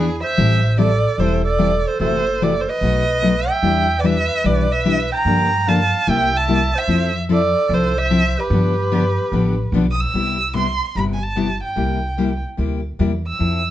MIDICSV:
0, 0, Header, 1, 5, 480
1, 0, Start_track
1, 0, Key_signature, 0, "major"
1, 0, Tempo, 406780
1, 445, Time_signature, 4, 2, 24, 8
1, 16172, End_track
2, 0, Start_track
2, 0, Title_t, "Violin"
2, 0, Program_c, 0, 40
2, 0, Note_on_c, 0, 68, 76
2, 237, Note_off_c, 0, 68, 0
2, 271, Note_on_c, 0, 76, 90
2, 879, Note_off_c, 0, 76, 0
2, 949, Note_on_c, 0, 74, 87
2, 1413, Note_on_c, 0, 72, 79
2, 1431, Note_off_c, 0, 74, 0
2, 1715, Note_off_c, 0, 72, 0
2, 1727, Note_on_c, 0, 74, 83
2, 2217, Note_on_c, 0, 72, 80
2, 2235, Note_off_c, 0, 74, 0
2, 2379, Note_off_c, 0, 72, 0
2, 2391, Note_on_c, 0, 72, 84
2, 2867, Note_on_c, 0, 74, 81
2, 2885, Note_off_c, 0, 72, 0
2, 3076, Note_on_c, 0, 72, 61
2, 3094, Note_off_c, 0, 74, 0
2, 3177, Note_on_c, 0, 75, 92
2, 3194, Note_off_c, 0, 72, 0
2, 4125, Note_on_c, 0, 79, 91
2, 4142, Note_off_c, 0, 75, 0
2, 4717, Note_on_c, 0, 74, 67
2, 4735, Note_off_c, 0, 79, 0
2, 4784, Note_on_c, 0, 76, 93
2, 4801, Note_off_c, 0, 74, 0
2, 5264, Note_on_c, 0, 74, 82
2, 5281, Note_off_c, 0, 76, 0
2, 5570, Note_on_c, 0, 76, 93
2, 5588, Note_off_c, 0, 74, 0
2, 6041, Note_off_c, 0, 76, 0
2, 6071, Note_on_c, 0, 82, 96
2, 6709, Note_on_c, 0, 81, 94
2, 6727, Note_off_c, 0, 82, 0
2, 7195, Note_on_c, 0, 79, 98
2, 7213, Note_off_c, 0, 81, 0
2, 7516, Note_on_c, 0, 81, 92
2, 7534, Note_off_c, 0, 79, 0
2, 7999, Note_on_c, 0, 76, 89
2, 8017, Note_off_c, 0, 81, 0
2, 8455, Note_off_c, 0, 76, 0
2, 8649, Note_on_c, 0, 74, 96
2, 9131, Note_on_c, 0, 72, 86
2, 9149, Note_off_c, 0, 74, 0
2, 9418, Note_on_c, 0, 76, 98
2, 9436, Note_off_c, 0, 72, 0
2, 9908, Note_on_c, 0, 71, 80
2, 9925, Note_off_c, 0, 76, 0
2, 11504, Note_off_c, 0, 71, 0
2, 11695, Note_on_c, 0, 87, 76
2, 11803, Note_on_c, 0, 88, 96
2, 11821, Note_off_c, 0, 87, 0
2, 12452, Note_off_c, 0, 88, 0
2, 12461, Note_on_c, 0, 84, 81
2, 12901, Note_off_c, 0, 84, 0
2, 12940, Note_on_c, 0, 83, 82
2, 13028, Note_off_c, 0, 83, 0
2, 13144, Note_on_c, 0, 80, 62
2, 13252, Note_on_c, 0, 81, 73
2, 13270, Note_off_c, 0, 80, 0
2, 13723, Note_off_c, 0, 81, 0
2, 13737, Note_on_c, 0, 79, 61
2, 14639, Note_off_c, 0, 79, 0
2, 15671, Note_on_c, 0, 88, 79
2, 16172, Note_off_c, 0, 88, 0
2, 16172, End_track
3, 0, Start_track
3, 0, Title_t, "Clarinet"
3, 0, Program_c, 1, 71
3, 0, Note_on_c, 1, 64, 71
3, 236, Note_off_c, 1, 64, 0
3, 275, Note_on_c, 1, 72, 84
3, 882, Note_off_c, 1, 72, 0
3, 928, Note_on_c, 1, 69, 77
3, 1391, Note_off_c, 1, 69, 0
3, 1391, Note_on_c, 1, 69, 68
3, 1689, Note_off_c, 1, 69, 0
3, 1696, Note_on_c, 1, 69, 73
3, 2175, Note_off_c, 1, 69, 0
3, 2175, Note_on_c, 1, 69, 72
3, 2358, Note_off_c, 1, 69, 0
3, 2363, Note_on_c, 1, 69, 74
3, 2852, Note_off_c, 1, 69, 0
3, 2852, Note_on_c, 1, 69, 70
3, 3037, Note_off_c, 1, 69, 0
3, 3037, Note_on_c, 1, 69, 64
3, 3162, Note_on_c, 1, 71, 81
3, 3179, Note_off_c, 1, 69, 0
3, 4134, Note_on_c, 1, 76, 86
3, 4152, Note_off_c, 1, 71, 0
3, 4708, Note_on_c, 1, 71, 61
3, 4725, Note_off_c, 1, 76, 0
3, 4772, Note_off_c, 1, 71, 0
3, 4772, Note_on_c, 1, 71, 75
3, 5264, Note_off_c, 1, 71, 0
3, 5264, Note_on_c, 1, 71, 73
3, 5561, Note_off_c, 1, 71, 0
3, 5561, Note_on_c, 1, 71, 75
3, 6031, Note_off_c, 1, 71, 0
3, 6038, Note_on_c, 1, 79, 94
3, 6698, Note_on_c, 1, 77, 83
3, 6716, Note_off_c, 1, 79, 0
3, 7187, Note_on_c, 1, 76, 72
3, 7205, Note_off_c, 1, 77, 0
3, 7480, Note_off_c, 1, 76, 0
3, 7480, Note_on_c, 1, 76, 78
3, 7967, Note_on_c, 1, 72, 81
3, 7984, Note_off_c, 1, 76, 0
3, 8439, Note_off_c, 1, 72, 0
3, 8625, Note_on_c, 1, 69, 72
3, 9099, Note_off_c, 1, 69, 0
3, 9099, Note_on_c, 1, 69, 71
3, 9419, Note_on_c, 1, 72, 76
3, 9437, Note_off_c, 1, 69, 0
3, 9893, Note_on_c, 1, 67, 86
3, 9911, Note_off_c, 1, 72, 0
3, 11496, Note_off_c, 1, 67, 0
3, 16172, End_track
4, 0, Start_track
4, 0, Title_t, "Steel-string acoustic guitar"
4, 0, Program_c, 2, 25
4, 442, Note_on_c, 2, 52, 66
4, 443, Note_on_c, 2, 55, 68
4, 450, Note_on_c, 2, 60, 69
4, 450, Note_on_c, 2, 64, 71
4, 452, Note_on_c, 2, 69, 73
4, 697, Note_off_c, 2, 52, 0
4, 698, Note_off_c, 2, 55, 0
4, 702, Note_off_c, 2, 60, 0
4, 702, Note_off_c, 2, 64, 0
4, 703, Note_off_c, 2, 69, 0
4, 912, Note_on_c, 2, 52, 84
4, 917, Note_on_c, 2, 55, 85
4, 921, Note_on_c, 2, 60, 81
4, 924, Note_on_c, 2, 64, 85
4, 930, Note_on_c, 2, 69, 87
4, 1053, Note_off_c, 2, 52, 0
4, 1056, Note_off_c, 2, 55, 0
4, 1058, Note_off_c, 2, 60, 0
4, 1059, Note_off_c, 2, 64, 0
4, 1062, Note_off_c, 2, 69, 0
4, 1409, Note_on_c, 2, 52, 63
4, 1411, Note_on_c, 2, 55, 63
4, 1411, Note_on_c, 2, 60, 75
4, 1414, Note_on_c, 2, 64, 70
4, 1423, Note_on_c, 2, 69, 75
4, 1662, Note_off_c, 2, 52, 0
4, 1663, Note_off_c, 2, 55, 0
4, 1663, Note_off_c, 2, 60, 0
4, 1664, Note_off_c, 2, 64, 0
4, 1669, Note_off_c, 2, 69, 0
4, 1867, Note_on_c, 2, 52, 86
4, 1869, Note_on_c, 2, 55, 80
4, 1873, Note_on_c, 2, 60, 89
4, 1883, Note_on_c, 2, 69, 88
4, 1884, Note_on_c, 2, 64, 87
4, 2011, Note_off_c, 2, 52, 0
4, 2012, Note_off_c, 2, 55, 0
4, 2014, Note_off_c, 2, 60, 0
4, 2019, Note_off_c, 2, 64, 0
4, 2019, Note_off_c, 2, 69, 0
4, 2364, Note_on_c, 2, 52, 66
4, 2365, Note_on_c, 2, 48, 59
4, 2369, Note_on_c, 2, 64, 73
4, 2374, Note_on_c, 2, 66, 72
4, 2375, Note_on_c, 2, 57, 65
4, 2619, Note_off_c, 2, 48, 0
4, 2619, Note_off_c, 2, 52, 0
4, 2622, Note_off_c, 2, 64, 0
4, 2624, Note_off_c, 2, 57, 0
4, 2624, Note_off_c, 2, 66, 0
4, 2850, Note_on_c, 2, 48, 80
4, 2853, Note_on_c, 2, 52, 87
4, 2854, Note_on_c, 2, 57, 82
4, 2856, Note_on_c, 2, 64, 85
4, 2862, Note_on_c, 2, 66, 86
4, 2983, Note_off_c, 2, 48, 0
4, 2984, Note_off_c, 2, 52, 0
4, 2985, Note_off_c, 2, 57, 0
4, 2985, Note_off_c, 2, 64, 0
4, 2989, Note_off_c, 2, 66, 0
4, 3336, Note_on_c, 2, 47, 65
4, 3338, Note_on_c, 2, 54, 51
4, 3343, Note_on_c, 2, 63, 63
4, 3345, Note_on_c, 2, 57, 67
4, 3346, Note_on_c, 2, 66, 72
4, 3585, Note_off_c, 2, 47, 0
4, 3586, Note_off_c, 2, 54, 0
4, 3589, Note_off_c, 2, 63, 0
4, 3590, Note_off_c, 2, 57, 0
4, 3590, Note_off_c, 2, 66, 0
4, 3801, Note_on_c, 2, 47, 76
4, 3805, Note_on_c, 2, 54, 77
4, 3810, Note_on_c, 2, 57, 85
4, 3811, Note_on_c, 2, 63, 77
4, 3817, Note_on_c, 2, 66, 75
4, 3938, Note_off_c, 2, 47, 0
4, 3940, Note_off_c, 2, 54, 0
4, 3942, Note_off_c, 2, 57, 0
4, 3943, Note_off_c, 2, 63, 0
4, 3946, Note_off_c, 2, 66, 0
4, 4282, Note_on_c, 2, 52, 65
4, 4286, Note_on_c, 2, 62, 65
4, 4290, Note_on_c, 2, 55, 64
4, 4293, Note_on_c, 2, 64, 69
4, 4296, Note_on_c, 2, 71, 70
4, 4539, Note_off_c, 2, 52, 0
4, 4540, Note_off_c, 2, 62, 0
4, 4542, Note_off_c, 2, 55, 0
4, 4544, Note_off_c, 2, 64, 0
4, 4545, Note_off_c, 2, 71, 0
4, 4762, Note_on_c, 2, 52, 80
4, 4764, Note_on_c, 2, 55, 83
4, 4771, Note_on_c, 2, 62, 80
4, 4775, Note_on_c, 2, 64, 93
4, 4775, Note_on_c, 2, 71, 95
4, 4899, Note_off_c, 2, 52, 0
4, 4899, Note_off_c, 2, 55, 0
4, 4903, Note_off_c, 2, 62, 0
4, 4905, Note_off_c, 2, 64, 0
4, 4905, Note_off_c, 2, 71, 0
4, 5238, Note_on_c, 2, 52, 61
4, 5242, Note_on_c, 2, 55, 69
4, 5244, Note_on_c, 2, 62, 63
4, 5244, Note_on_c, 2, 64, 66
4, 5250, Note_on_c, 2, 71, 62
4, 5496, Note_off_c, 2, 52, 0
4, 5499, Note_off_c, 2, 55, 0
4, 5499, Note_off_c, 2, 64, 0
4, 5500, Note_off_c, 2, 62, 0
4, 5503, Note_off_c, 2, 71, 0
4, 5723, Note_on_c, 2, 52, 78
4, 5725, Note_on_c, 2, 55, 77
4, 5727, Note_on_c, 2, 62, 84
4, 5732, Note_on_c, 2, 64, 91
4, 5738, Note_on_c, 2, 71, 94
4, 5859, Note_off_c, 2, 52, 0
4, 5860, Note_off_c, 2, 55, 0
4, 5861, Note_off_c, 2, 62, 0
4, 5863, Note_off_c, 2, 64, 0
4, 5866, Note_off_c, 2, 71, 0
4, 6208, Note_on_c, 2, 50, 67
4, 6217, Note_on_c, 2, 53, 63
4, 6218, Note_on_c, 2, 58, 68
4, 6223, Note_on_c, 2, 62, 65
4, 6227, Note_on_c, 2, 67, 77
4, 6462, Note_off_c, 2, 50, 0
4, 6466, Note_off_c, 2, 53, 0
4, 6466, Note_off_c, 2, 58, 0
4, 6469, Note_off_c, 2, 62, 0
4, 6471, Note_off_c, 2, 67, 0
4, 6692, Note_on_c, 2, 50, 74
4, 6698, Note_on_c, 2, 53, 88
4, 6701, Note_on_c, 2, 62, 97
4, 6703, Note_on_c, 2, 58, 86
4, 6706, Note_on_c, 2, 67, 86
4, 6824, Note_off_c, 2, 50, 0
4, 6827, Note_off_c, 2, 53, 0
4, 6828, Note_off_c, 2, 62, 0
4, 6829, Note_off_c, 2, 58, 0
4, 6830, Note_off_c, 2, 67, 0
4, 7164, Note_on_c, 2, 48, 66
4, 7168, Note_on_c, 2, 55, 59
4, 7169, Note_on_c, 2, 64, 68
4, 7174, Note_on_c, 2, 58, 70
4, 7180, Note_on_c, 2, 67, 74
4, 7419, Note_off_c, 2, 48, 0
4, 7421, Note_off_c, 2, 55, 0
4, 7422, Note_off_c, 2, 64, 0
4, 7424, Note_off_c, 2, 58, 0
4, 7427, Note_off_c, 2, 67, 0
4, 7646, Note_on_c, 2, 48, 91
4, 7652, Note_on_c, 2, 55, 86
4, 7656, Note_on_c, 2, 58, 90
4, 7658, Note_on_c, 2, 64, 80
4, 7663, Note_on_c, 2, 67, 92
4, 7781, Note_off_c, 2, 48, 0
4, 7784, Note_off_c, 2, 55, 0
4, 7786, Note_off_c, 2, 58, 0
4, 7787, Note_off_c, 2, 64, 0
4, 7789, Note_off_c, 2, 67, 0
4, 8119, Note_on_c, 2, 53, 68
4, 8127, Note_on_c, 2, 60, 69
4, 8133, Note_on_c, 2, 64, 80
4, 8137, Note_on_c, 2, 69, 68
4, 8377, Note_off_c, 2, 53, 0
4, 8381, Note_off_c, 2, 60, 0
4, 8384, Note_off_c, 2, 64, 0
4, 8386, Note_off_c, 2, 69, 0
4, 8602, Note_on_c, 2, 53, 85
4, 8605, Note_on_c, 2, 60, 90
4, 8611, Note_on_c, 2, 69, 96
4, 8613, Note_on_c, 2, 64, 87
4, 8738, Note_off_c, 2, 53, 0
4, 8740, Note_off_c, 2, 60, 0
4, 8743, Note_off_c, 2, 69, 0
4, 8744, Note_off_c, 2, 64, 0
4, 9089, Note_on_c, 2, 53, 60
4, 9093, Note_on_c, 2, 60, 65
4, 9095, Note_on_c, 2, 64, 63
4, 9101, Note_on_c, 2, 69, 67
4, 9342, Note_off_c, 2, 53, 0
4, 9344, Note_off_c, 2, 60, 0
4, 9345, Note_off_c, 2, 64, 0
4, 9348, Note_off_c, 2, 69, 0
4, 9563, Note_on_c, 2, 53, 78
4, 9566, Note_on_c, 2, 60, 94
4, 9574, Note_on_c, 2, 64, 94
4, 9574, Note_on_c, 2, 69, 95
4, 9699, Note_off_c, 2, 53, 0
4, 9701, Note_off_c, 2, 60, 0
4, 9704, Note_off_c, 2, 64, 0
4, 9705, Note_off_c, 2, 69, 0
4, 10052, Note_on_c, 2, 50, 60
4, 10060, Note_on_c, 2, 62, 66
4, 10062, Note_on_c, 2, 53, 64
4, 10064, Note_on_c, 2, 59, 69
4, 10069, Note_on_c, 2, 67, 72
4, 10303, Note_off_c, 2, 50, 0
4, 10307, Note_off_c, 2, 62, 0
4, 10308, Note_off_c, 2, 53, 0
4, 10309, Note_off_c, 2, 59, 0
4, 10312, Note_off_c, 2, 67, 0
4, 10522, Note_on_c, 2, 50, 79
4, 10522, Note_on_c, 2, 53, 87
4, 10530, Note_on_c, 2, 59, 87
4, 10532, Note_on_c, 2, 62, 73
4, 10534, Note_on_c, 2, 67, 87
4, 10658, Note_off_c, 2, 50, 0
4, 10658, Note_off_c, 2, 53, 0
4, 10662, Note_off_c, 2, 59, 0
4, 10663, Note_off_c, 2, 62, 0
4, 10664, Note_off_c, 2, 67, 0
4, 11006, Note_on_c, 2, 50, 64
4, 11011, Note_on_c, 2, 53, 68
4, 11011, Note_on_c, 2, 59, 67
4, 11016, Note_on_c, 2, 62, 66
4, 11019, Note_on_c, 2, 67, 69
4, 11260, Note_off_c, 2, 50, 0
4, 11262, Note_off_c, 2, 53, 0
4, 11263, Note_off_c, 2, 59, 0
4, 11265, Note_off_c, 2, 62, 0
4, 11266, Note_off_c, 2, 67, 0
4, 11489, Note_on_c, 2, 50, 86
4, 11497, Note_on_c, 2, 53, 76
4, 11500, Note_on_c, 2, 59, 84
4, 11502, Note_on_c, 2, 67, 74
4, 11503, Note_on_c, 2, 62, 86
4, 11622, Note_off_c, 2, 50, 0
4, 11626, Note_off_c, 2, 53, 0
4, 11627, Note_off_c, 2, 59, 0
4, 11628, Note_off_c, 2, 67, 0
4, 11629, Note_off_c, 2, 62, 0
4, 11974, Note_on_c, 2, 48, 58
4, 11974, Note_on_c, 2, 55, 59
4, 11976, Note_on_c, 2, 59, 59
4, 11980, Note_on_c, 2, 67, 66
4, 11986, Note_on_c, 2, 64, 61
4, 12224, Note_off_c, 2, 48, 0
4, 12224, Note_off_c, 2, 55, 0
4, 12225, Note_off_c, 2, 59, 0
4, 12228, Note_off_c, 2, 67, 0
4, 12230, Note_off_c, 2, 64, 0
4, 12437, Note_on_c, 2, 48, 76
4, 12445, Note_on_c, 2, 55, 82
4, 12448, Note_on_c, 2, 59, 81
4, 12448, Note_on_c, 2, 64, 69
4, 12449, Note_on_c, 2, 67, 79
4, 12576, Note_off_c, 2, 48, 0
4, 12580, Note_off_c, 2, 55, 0
4, 12582, Note_off_c, 2, 59, 0
4, 12582, Note_off_c, 2, 64, 0
4, 12582, Note_off_c, 2, 67, 0
4, 12940, Note_on_c, 2, 48, 52
4, 12943, Note_on_c, 2, 55, 56
4, 12947, Note_on_c, 2, 59, 57
4, 12951, Note_on_c, 2, 64, 58
4, 12952, Note_on_c, 2, 67, 57
4, 13188, Note_off_c, 2, 48, 0
4, 13190, Note_off_c, 2, 55, 0
4, 13192, Note_off_c, 2, 59, 0
4, 13193, Note_off_c, 2, 64, 0
4, 13194, Note_off_c, 2, 67, 0
4, 13403, Note_on_c, 2, 48, 74
4, 13405, Note_on_c, 2, 59, 80
4, 13408, Note_on_c, 2, 55, 74
4, 13412, Note_on_c, 2, 64, 67
4, 13418, Note_on_c, 2, 67, 74
4, 13540, Note_off_c, 2, 48, 0
4, 13541, Note_off_c, 2, 59, 0
4, 13542, Note_off_c, 2, 55, 0
4, 13544, Note_off_c, 2, 64, 0
4, 13547, Note_off_c, 2, 67, 0
4, 13875, Note_on_c, 2, 48, 55
4, 13880, Note_on_c, 2, 55, 61
4, 13889, Note_on_c, 2, 58, 55
4, 13889, Note_on_c, 2, 64, 64
4, 13893, Note_on_c, 2, 67, 64
4, 14136, Note_off_c, 2, 48, 0
4, 14139, Note_off_c, 2, 55, 0
4, 14143, Note_off_c, 2, 58, 0
4, 14143, Note_off_c, 2, 64, 0
4, 14145, Note_off_c, 2, 67, 0
4, 14371, Note_on_c, 2, 48, 65
4, 14373, Note_on_c, 2, 55, 72
4, 14378, Note_on_c, 2, 58, 69
4, 14380, Note_on_c, 2, 64, 77
4, 14383, Note_on_c, 2, 67, 76
4, 14504, Note_off_c, 2, 48, 0
4, 14505, Note_off_c, 2, 55, 0
4, 14508, Note_off_c, 2, 58, 0
4, 14509, Note_off_c, 2, 64, 0
4, 14510, Note_off_c, 2, 67, 0
4, 14837, Note_on_c, 2, 48, 60
4, 14844, Note_on_c, 2, 55, 52
4, 14847, Note_on_c, 2, 58, 58
4, 14851, Note_on_c, 2, 64, 57
4, 14855, Note_on_c, 2, 67, 65
4, 15097, Note_off_c, 2, 48, 0
4, 15101, Note_off_c, 2, 55, 0
4, 15102, Note_off_c, 2, 58, 0
4, 15104, Note_off_c, 2, 64, 0
4, 15106, Note_off_c, 2, 67, 0
4, 15329, Note_on_c, 2, 48, 71
4, 15336, Note_on_c, 2, 55, 77
4, 15337, Note_on_c, 2, 58, 75
4, 15341, Note_on_c, 2, 64, 82
4, 15346, Note_on_c, 2, 67, 81
4, 15464, Note_off_c, 2, 48, 0
4, 15468, Note_off_c, 2, 55, 0
4, 15468, Note_off_c, 2, 58, 0
4, 15470, Note_off_c, 2, 64, 0
4, 15472, Note_off_c, 2, 67, 0
4, 15800, Note_on_c, 2, 53, 49
4, 15802, Note_on_c, 2, 60, 63
4, 15805, Note_on_c, 2, 64, 69
4, 15815, Note_on_c, 2, 69, 66
4, 16059, Note_off_c, 2, 53, 0
4, 16060, Note_off_c, 2, 60, 0
4, 16062, Note_off_c, 2, 64, 0
4, 16067, Note_off_c, 2, 69, 0
4, 16172, End_track
5, 0, Start_track
5, 0, Title_t, "Upright bass"
5, 0, Program_c, 3, 32
5, 0, Note_on_c, 3, 40, 76
5, 251, Note_off_c, 3, 40, 0
5, 450, Note_on_c, 3, 33, 90
5, 1216, Note_off_c, 3, 33, 0
5, 1392, Note_on_c, 3, 28, 78
5, 2165, Note_off_c, 3, 28, 0
5, 2358, Note_on_c, 3, 30, 76
5, 3129, Note_off_c, 3, 30, 0
5, 3319, Note_on_c, 3, 35, 84
5, 4089, Note_off_c, 3, 35, 0
5, 4280, Note_on_c, 3, 40, 78
5, 5050, Note_off_c, 3, 40, 0
5, 5244, Note_on_c, 3, 35, 72
5, 6012, Note_off_c, 3, 35, 0
5, 6196, Note_on_c, 3, 43, 78
5, 6968, Note_off_c, 3, 43, 0
5, 7168, Note_on_c, 3, 36, 92
5, 7935, Note_off_c, 3, 36, 0
5, 8115, Note_on_c, 3, 41, 70
5, 8887, Note_off_c, 3, 41, 0
5, 9077, Note_on_c, 3, 36, 84
5, 9848, Note_off_c, 3, 36, 0
5, 10033, Note_on_c, 3, 43, 89
5, 10806, Note_off_c, 3, 43, 0
5, 10994, Note_on_c, 3, 33, 77
5, 11407, Note_off_c, 3, 33, 0
5, 11471, Note_on_c, 3, 35, 81
5, 11885, Note_off_c, 3, 35, 0
5, 11963, Note_on_c, 3, 36, 69
5, 12732, Note_off_c, 3, 36, 0
5, 12925, Note_on_c, 3, 31, 67
5, 13694, Note_off_c, 3, 31, 0
5, 13884, Note_on_c, 3, 36, 70
5, 14654, Note_off_c, 3, 36, 0
5, 14847, Note_on_c, 3, 38, 60
5, 15256, Note_off_c, 3, 38, 0
5, 15333, Note_on_c, 3, 40, 81
5, 15740, Note_off_c, 3, 40, 0
5, 15813, Note_on_c, 3, 41, 74
5, 16172, Note_off_c, 3, 41, 0
5, 16172, End_track
0, 0, End_of_file